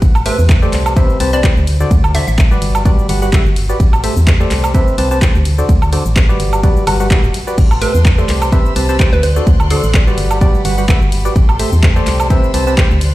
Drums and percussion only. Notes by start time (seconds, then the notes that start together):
0.02 kick, ride, shaker
0.15 high woodblock, shaker
0.26 open hi-hat, ride
0.39 shaker
0.49 kick, clap, ride, shaker
0.62 shaker
0.73 clap, open hi-hat, ride
0.86 high woodblock, shaker
0.96 kick, ride, shaker
1.10 shaker
1.20 open hi-hat, ride
1.33 shaker
1.44 kick, clap, ride, shaker
1.57 shaker
1.67 open hi-hat, ride
1.80 shaker
1.91 kick, ride, shaker
2.04 high woodblock, shaker
2.15 open hi-hat, ride
2.28 shaker
2.38 kick, clap, ride, shaker
2.51 shaker
2.62 open hi-hat, ride
2.75 high woodblock, shaker
2.85 kick, ride, shaker
2.99 shaker
3.09 open hi-hat, ride
3.22 shaker
3.33 kick, clap, ride, shaker
3.46 shaker
3.56 open hi-hat, ride
3.69 shaker
3.80 kick, ride, shaker
3.93 high woodblock, shaker
4.04 open hi-hat, ride
4.17 shaker
4.27 kick, clap, ride, shaker
4.40 shaker
4.51 clap, open hi-hat, ride
4.64 high woodblock, shaker
4.74 kick, ride, shaker
4.88 shaker
4.98 open hi-hat, ride
5.11 shaker
5.22 kick, clap, ride, shaker
5.35 shaker
5.45 open hi-hat, ride
5.58 shaker
5.69 kick, ride, shaker
5.82 high woodblock, shaker
5.93 open hi-hat, ride
6.06 shaker
6.16 kick, clap, ride, shaker
6.29 shaker
6.40 open hi-hat, ride
6.53 high woodblock, shaker
6.63 kick, ride, shaker
6.76 shaker
6.87 open hi-hat, ride, high woodblock
7.00 shaker
7.11 kick, clap, ride, shaker
7.24 shaker
7.34 open hi-hat, ride
7.47 shaker
7.58 kick, crash, ride, shaker
7.71 high woodblock, shaker
7.82 open hi-hat, ride
7.95 shaker
8.05 kick, clap, ride, shaker
8.18 shaker
8.29 clap, open hi-hat, ride
8.42 high woodblock, shaker
8.52 kick, ride, shaker
8.65 shaker
8.76 open hi-hat, ride
8.89 shaker
9.00 kick, clap, ride, shaker
9.13 shaker
9.23 open hi-hat, ride
9.36 shaker
9.47 kick, ride, shaker
9.60 high woodblock, shaker
9.70 open hi-hat, ride
9.83 shaker
9.94 kick, clap, ride, shaker
10.07 shaker
10.18 open hi-hat, ride
10.31 high woodblock, shaker
10.41 kick, ride, shaker
10.54 shaker
10.65 open hi-hat, ride
10.78 shaker
10.89 kick, clap, ride, shaker
11.02 shaker
11.12 open hi-hat, ride
11.25 shaker
11.36 kick, ride, shaker
11.49 high woodblock, shaker
11.59 open hi-hat, ride
11.72 shaker
11.83 kick, clap, ride, shaker
11.96 shaker
12.07 clap, open hi-hat, ride
12.20 high woodblock, shaker
12.30 kick, ride, shaker
12.43 shaker
12.54 open hi-hat, ride
12.67 shaker
12.78 kick, clap, ride, shaker
12.91 shaker
13.01 open hi-hat, ride